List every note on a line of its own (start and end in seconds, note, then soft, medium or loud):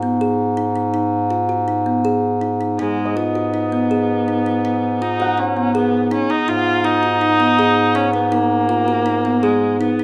0.00 2.76 G#2 medium
0.00 0.18 B3 medium
0.21 0.52 G#4 medium
0.57 0.73 D#4 medium
0.76 0.92 D#4 medium
0.94 1.26 D#4 medium
1.30 1.47 F4 medium
1.49 1.65 F#4 medium
1.68 1.84 D#4 medium
1.86 2.02 B3 medium
2.05 2.37 G#4 medium
2.41 2.58 D#4 medium
2.61 2.77 D#4 medium
2.79 6.31 G#2 medium
2.79 3.18 G#3 medium
2.79 3.12 D#4 medium
3.05 5.43 D#5 soft
3.17 5.03 B3 medium
3.17 3.33 F4 medium
3.35 3.52 F#4 medium
3.54 3.70 D#4 medium
3.73 3.89 B3 medium
3.91 4.23 G#4 medium
4.28 4.44 D#4 medium
4.46 4.63 D#4 medium
4.65 4.97 D#4 medium
5.02 5.41 D#4 medium
5.02 5.18 F4 medium
5.20 5.36 F#4 medium
5.20 7.36 F#5 medium
5.26 7.13 A#5 soft
5.38 5.75 C#4 medium
5.38 5.54 D#4 medium
5.57 5.73 B3 medium
5.75 6.10 B3 medium
5.75 6.06 G#4 medium
6.11 6.32 C#4 medium
6.11 6.27 D#4 medium
6.30 6.46 D#4 medium
6.30 6.50 D#4 medium
6.48 10.04 G#2 medium
6.48 6.80 D#4 medium
6.48 6.86 F4 loud
6.84 7.97 D#4 loud
6.84 7.01 F4 medium
7.03 7.19 F#4 medium
7.21 7.37 D#4 medium
7.40 7.56 B3 medium
7.58 7.90 G#4 medium
7.95 8.12 C#4 medium
7.95 8.11 D#4 medium
8.13 8.34 B3 medium
8.13 8.29 D#4 medium
8.32 9.45 A#3 medium
8.32 8.64 D#4 medium
8.69 8.85 F4 medium
8.88 9.04 F#4 medium
9.06 9.22 D#4 medium
9.25 9.41 B3 medium
9.43 9.80 G#3 medium
9.43 9.75 G#4 medium
9.81 10.04 B3 medium
9.81 9.97 D#4 medium
9.99 10.04 D#4 medium